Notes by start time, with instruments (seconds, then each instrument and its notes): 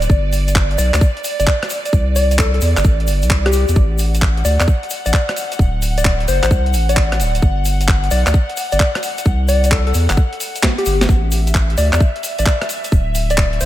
Already playing: analog synth pad D5
0.02 closed hi-hat, shaker
0.10 sub bass G1, kick, shaker
0.33 open hi-hat, shaker
0.48 closed hi-hat, shaker
0.55 kick, clap
0.71 closed hi-hat
0.78 sub bass B1, soft synth lead D5, open hi-hat, shaker
0.94 sub bass D2, soft synth lead D5, cross-stick, clap, closed hi-hat, shaker
1.01 kick, shaker
1.17 closed hi-hat
1.24 open hi-hat, shaker
1.40 sub bass G1, soft synth lead D5, closed hi-hat, shaker
1.47 soft synth lead D5, kick, clap, shaker
1.63 cross-stick, closed hi-hat
1.70 open hi-hat, shaker
1.85 closed hi-hat, shaker
1.93 sub bass C2, kick, shaker
2.16 soft synth lead D5, open hi-hat, shaker
2.31 closed hi-hat, shaker
2.39 soft synth lead A4, kick, clap, shaker
2.54 soft synth lead A4, closed hi-hat
2.61 sub bass E2, open hi-hat, shaker
2.77 sub bass G1, cross-stick, clap, closed hi-hat, shaker
2.84 sub bass A1, kick, shaker
3.00 closed hi-hat
3.07 sub bass G1, open hi-hat, shaker
3.22 sub bass C2, closed hi-hat, shaker
3.30 kick, clap, shaker
3.46 soft synth lead G4, cross-stick, closed hi-hat
3.53 soft synth lead G4, open hi-hat, shaker
3.68 sub bass E2, closed hi-hat, shaker
3.76 sub bass A1, analog synth pad F#5, kick
3.98 open hi-hat, shaker
4.15 closed hi-hat, shaker
4.22 kick, clap
4.37 closed hi-hat
4.45 sub bass D2, soft synth lead D5, open hi-hat, shaker
4.60 sub bass E2, soft synth lead D5, cross-stick, clap, closed hi-hat, shaker
4.68 kick, shaker
4.83 closed hi-hat
4.90 open hi-hat, shaker
5.06 sub bass A1, soft synth lead D5, closed hi-hat, shaker
5.13 soft synth lead D5, kick, clap, shaker
5.29 cross-stick, closed hi-hat
5.36 open hi-hat, shaker
5.52 closed hi-hat, shaker
5.59 sub bass D1, kick, shaker
5.82 open hi-hat, shaker
5.98 soft synth lead D5, closed hi-hat, shaker
6.05 soft synth lead D5, kick, clap
6.20 closed hi-hat
6.28 sub bass F#1, soft synth lead C5, open hi-hat, shaker
6.43 sub bass A1, soft synth lead C5, cross-stick, clap, closed hi-hat, shaker
6.51 sub bass C2, kick, shaker
6.66 closed hi-hat
6.73 sub bass A1, open hi-hat, shaker
6.89 soft synth lead D5, closed hi-hat, shaker
6.97 kick, clap
7.12 cross-stick, closed hi-hat
7.20 sub bass D1, open hi-hat, shaker
7.35 closed hi-hat, shaker
7.42 sub bass G1, kick, shaker
7.65 open hi-hat, shaker
7.81 closed hi-hat, shaker
7.88 kick, clap, shaker
8.04 closed hi-hat
8.11 sub bass B1, soft synth lead D5, open hi-hat, shaker
8.26 sub bass D2, soft synth lead D5, cross-stick, clap, closed hi-hat, shaker
8.34 kick, shaker
8.50 closed hi-hat
8.57 open hi-hat, shaker
8.72 sub bass G1, soft synth lead D5, closed hi-hat, shaker
8.80 soft synth lead D5, kick, clap, shaker
8.95 cross-stick, closed hi-hat
9.03 open hi-hat, shaker
9.18 closed hi-hat, shaker
9.25 sub bass C2, kick, shaker
9.48 soft synth lead D5, open hi-hat, shaker
9.64 closed hi-hat, shaker
9.71 soft synth lead A4, kick, clap
9.87 soft synth lead A4, closed hi-hat
9.94 sub bass E2, open hi-hat, shaker
10.10 sub bass G1, cross-stick, clap, closed hi-hat, shaker
10.17 kick, shaker
10.33 closed hi-hat
10.40 open hi-hat, shaker
10.56 closed hi-hat, shaker
10.63 kick, snare, clap
10.78 soft synth lead G4, closed hi-hat
10.86 sub bass G1, soft synth lead G4, open hi-hat, shaker
11.01 snare, closed hi-hat, shaker
11.09 sub bass A1, analog synth pad E5, kick, shaker
11.32 open hi-hat, shaker
11.47 closed hi-hat, shaker
11.55 kick, clap, shaker
11.70 closed hi-hat
11.78 sub bass D2, soft synth lead D5, open hi-hat, shaker
11.93 sub bass E2, soft synth lead D5, cross-stick, clap, closed hi-hat, shaker
12.00 kick, shaker
12.16 closed hi-hat
12.23 open hi-hat, shaker
12.39 sub bass A1, soft synth lead D5, closed hi-hat, shaker
12.46 kick, clap, shaker
12.62 cross-stick, closed hi-hat
12.69 open hi-hat, shaker
12.84 closed hi-hat, shaker
12.92 sub bass D1, kick, shaker
13.15 open hi-hat, shaker
13.30 soft synth lead D5, closed hi-hat, shaker
13.38 soft synth lead D5, kick, clap
13.53 closed hi-hat
13.61 sub bass F#1, soft synth lead C5, open hi-hat, shaker